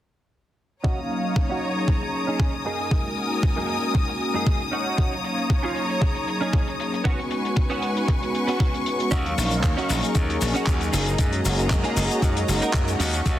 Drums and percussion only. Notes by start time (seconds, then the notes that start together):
0.84 kick, closed hi-hat
0.98 closed hi-hat
1.11 closed hi-hat
1.24 closed hi-hat
1.36 kick, closed hi-hat
1.62 closed hi-hat
1.76 closed hi-hat
1.87 kick, closed hi-hat
2.02 closed hi-hat
2.13 closed hi-hat
2.28 closed hi-hat
2.40 kick, closed hi-hat
2.53 closed hi-hat
2.66 closed hi-hat
2.80 closed hi-hat
2.91 kick, closed hi-hat
3.06 closed hi-hat
3.18 closed hi-hat
3.31 closed hi-hat
3.43 kick, closed hi-hat
3.57 closed hi-hat
3.69 closed hi-hat
3.82 closed hi-hat
3.95 kick, closed hi-hat
4.08 closed hi-hat
4.20 closed hi-hat
4.34 closed hi-hat
4.46 kick, closed hi-hat
4.61 closed hi-hat
4.73 closed hi-hat
4.86 closed hi-hat
4.97 kick, closed hi-hat
5.12 closed hi-hat
5.24 closed hi-hat
5.38 closed hi-hat
5.50 kick, closed hi-hat
5.64 closed hi-hat
5.75 closed hi-hat
5.90 closed hi-hat
6.01 kick, closed hi-hat
6.15 closed hi-hat
6.28 closed hi-hat
6.41 closed hi-hat
6.53 kick, closed hi-hat
6.68 closed hi-hat
6.80 closed hi-hat
6.94 closed hi-hat
7.05 kick, closed hi-hat
7.19 closed hi-hat
7.31 closed hi-hat
7.45 closed hi-hat
7.56 kick, closed hi-hat
7.70 closed hi-hat
7.82 closed hi-hat
7.97 closed hi-hat
8.08 kick, closed hi-hat
8.23 closed hi-hat
8.35 closed hi-hat
8.48 closed hi-hat
8.60 kick, closed hi-hat
8.74 closed hi-hat
8.86 closed hi-hat
9.00 closed hi-hat
9.11 kick, closed hi-hat, shaker
9.26 closed hi-hat
9.38 open hi-hat, shaker
9.51 closed hi-hat, shaker
9.63 kick, clap, closed hi-hat, shaker
9.78 closed hi-hat
9.89 open hi-hat, shaker
10.03 closed hi-hat, shaker
10.15 kick, closed hi-hat, shaker
10.30 closed hi-hat
10.41 open hi-hat, shaker
10.55 closed hi-hat, shaker
10.67 kick, clap, closed hi-hat, shaker
10.81 closed hi-hat, shaker
10.93 open hi-hat, shaker
11.06 closed hi-hat, shaker
11.18 kick, closed hi-hat, shaker
11.33 closed hi-hat
11.45 open hi-hat, shaker
11.59 closed hi-hat, shaker
11.70 kick, clap, closed hi-hat, shaker
11.84 closed hi-hat
11.97 open hi-hat, shaker
12.11 closed hi-hat, shaker
12.22 kick, closed hi-hat, shaker
12.37 closed hi-hat
12.48 open hi-hat, shaker
12.62 closed hi-hat, shaker
12.73 kick, clap, closed hi-hat, shaker
12.88 closed hi-hat, shaker
13.00 open hi-hat, shaker
13.14 closed hi-hat, shaker
13.26 kick, closed hi-hat, shaker